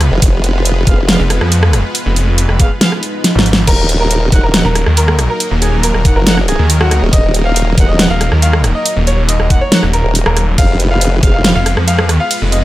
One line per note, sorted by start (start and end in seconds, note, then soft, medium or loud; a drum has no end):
0.00 3.64 G#3 medium
0.00 3.64 B3 medium
0.00 3.64 F4 medium
0.00 3.64 B4 medium
0.00 cross-stick medium
0.00 closed hi-hat medium
0.12 0.21 F1 loud
0.22 0.85 F1 medium
0.22 kick loud
0.22 closed hi-hat medium
0.44 closed hi-hat medium
0.65 closed hi-hat medium
0.87 1.18 F1 medium
0.87 0.98 B3 medium
0.87 0.98 G#4 medium
0.87 0.98 F5 medium
0.87 kick loud
0.87 closed hi-hat medium
1.08 1.20 B3 loud
1.08 1.20 G#4 medium
1.08 1.20 F5 loud
1.08 snare loud
1.08 closed hi-hat medium
1.20 1.39 F1 loud
1.30 cross-stick medium
1.30 closed hi-hat medium
1.41 1.83 F2 loud
1.41 cross-stick medium
1.52 closed hi-hat medium
1.63 cross-stick medium
1.73 cross-stick medium
1.73 closed hi-hat medium
1.95 closed hi-hat medium
2.06 2.47 F1 loud
2.16 closed hi-hat medium
2.38 closed hi-hat medium
2.49 2.69 F1 loud
2.49 cross-stick medium
2.60 2.71 B3 medium
2.60 2.71 G#4 medium
2.60 2.71 F5 medium
2.60 kick loud
2.60 closed hi-hat medium
2.81 2.92 B3 loud
2.81 2.92 G#4 medium
2.81 2.92 F5 loud
2.81 snare loud
2.81 closed hi-hat medium
2.81 swell medium
2.92 cross-stick medium
3.03 closed hi-hat medium
3.24 snare medium
3.24 closed hi-hat medium
3.35 3.66 G#1 medium
3.35 snare medium
3.46 closed hi-hat medium
3.53 snare loud
3.67 4.31 D#1 medium
3.67 10.54 F#3 medium
3.67 10.54 A#3 medium
3.67 10.54 D#4 medium
3.67 10.54 A#4 medium
3.67 3.86 A#4 loud
3.67 kick loud
3.67 closed hi-hat medium
3.67 crash medium
3.89 closed hi-hat medium
4.00 4.25 A#4 loud
4.11 closed hi-hat medium
4.32 4.63 D#1 medium
4.32 4.43 D#4 medium
4.32 4.43 A#4 medium
4.32 4.43 F#5 medium
4.32 kick loud
4.32 closed hi-hat medium
4.43 4.55 A#4 medium
4.54 4.65 D#4 loud
4.54 4.65 A#4 medium
4.54 4.65 F#5 loud
4.54 snare loud
4.54 closed hi-hat medium
4.65 4.85 D#1 medium
4.65 4.83 A#4 medium
4.75 cross-stick medium
4.75 closed hi-hat medium
4.86 5.28 D#2 loud
4.86 cross-stick medium
4.97 5.15 A#4 loud
4.97 closed hi-hat medium
5.08 cross-stick medium
5.19 cross-stick medium
5.19 closed hi-hat medium
5.30 5.48 A#4 medium
5.40 closed hi-hat medium
5.51 5.93 D#1 loud
5.62 5.74 G#4 medium
5.62 closed hi-hat medium
5.83 6.02 A#4 loud
5.83 closed hi-hat medium
5.94 6.14 D#1 loud
5.94 cross-stick medium
6.05 6.16 D#4 medium
6.05 6.16 A#4 medium
6.05 6.16 F#5 medium
6.05 kick loud
6.05 closed hi-hat medium
6.16 6.57 F#1 loud
6.16 6.34 A#4 loud
6.27 6.38 D#4 loud
6.27 6.38 A#4 medium
6.27 6.38 F#5 loud
6.27 snare loud
6.27 closed hi-hat medium
6.38 cross-stick medium
6.48 6.67 G#4 loud
6.48 closed hi-hat medium
6.59 7.01 D#2 loud
6.70 closed hi-hat medium
6.81 6.99 F#4 loud
6.81 cross-stick medium
6.91 cross-stick medium
6.91 closed hi-hat medium
7.02 7.11 D#1 loud
7.13 7.76 D#1 loud
7.13 7.31 D#5 loud
7.13 kick loud
7.13 closed hi-hat medium
7.34 closed hi-hat medium
7.45 7.70 F5 loud
7.56 closed hi-hat medium
7.78 8.08 D#1 loud
7.78 7.89 D#4 medium
7.78 7.89 A#4 medium
7.78 7.89 F#5 medium
7.78 kick loud
7.78 closed hi-hat medium
7.89 8.01 D#5 loud
7.99 8.10 D#4 loud
7.99 8.10 A#4 medium
7.99 8.10 F#5 loud
7.99 snare loud
7.99 closed hi-hat medium
8.10 8.30 D#1 loud
8.10 8.28 F5 loud
8.21 cross-stick medium
8.21 closed hi-hat medium
8.32 8.73 D#2 loud
8.32 cross-stick medium
8.42 8.61 F5 loud
8.42 closed hi-hat medium
8.53 cross-stick medium
8.64 cross-stick medium
8.64 closed hi-hat medium
8.75 8.93 D#5 medium
8.86 closed hi-hat medium
8.96 9.38 D#1 loud
9.07 9.20 C#5 medium
9.07 closed hi-hat medium
9.29 9.47 D#5 medium
9.29 closed hi-hat medium
9.40 9.60 D#1 loud
9.40 cross-stick medium
9.50 9.61 D#4 medium
9.50 9.61 A#4 medium
9.50 9.61 F#5 medium
9.50 kick loud
9.50 closed hi-hat medium
9.61 9.79 C#5 loud
9.72 9.83 D#4 loud
9.72 9.83 A#4 medium
9.72 9.83 F#5 loud
9.72 snare loud
9.72 closed hi-hat medium
9.83 10.03 D#1 loud
9.83 cross-stick medium
9.93 10.12 A#4 medium
9.93 closed hi-hat medium
10.04 10.24 D#1 loud
10.15 closed hi-hat medium
10.26 10.56 D#1 loud
10.26 10.44 A#4 medium
10.26 cross-stick medium
10.37 cross-stick medium
10.37 closed hi-hat medium
10.58 11.21 F1 loud
10.58 12.64 G#3 medium
10.58 12.64 B3 medium
10.58 12.64 F4 medium
10.58 12.64 B4 medium
10.58 10.77 F5 loud
10.58 kick loud
10.58 closed hi-hat medium
10.58 ride medium
10.80 closed hi-hat medium
10.91 11.15 F5 loud
11.01 closed hi-hat medium
11.01 ride soft
11.23 11.54 F1 medium
11.23 11.34 B3 medium
11.23 11.34 G#4 medium
11.23 11.34 F5 medium
11.23 kick loud
11.23 closed hi-hat medium
11.34 11.46 F5 medium
11.44 11.56 B3 medium
11.44 11.56 G#4 medium
11.44 11.56 F5 loud
11.44 snare loud
11.44 closed hi-hat medium
11.44 ride medium
11.55 11.75 F1 loud
11.55 11.74 F5 loud
11.66 cross-stick medium
11.66 closed hi-hat medium
11.77 12.18 F2 loud
11.77 cross-stick medium
11.87 12.06 F5 loud
11.87 closed hi-hat medium
11.87 ride soft
11.99 cross-stick medium
12.09 cross-stick medium
12.09 closed hi-hat medium
12.20 12.38 F5 loud
12.31 closed hi-hat medium
12.31 ride medium
12.42 12.64 F1 loud
12.52 12.64 D#5 medium
12.52 closed hi-hat medium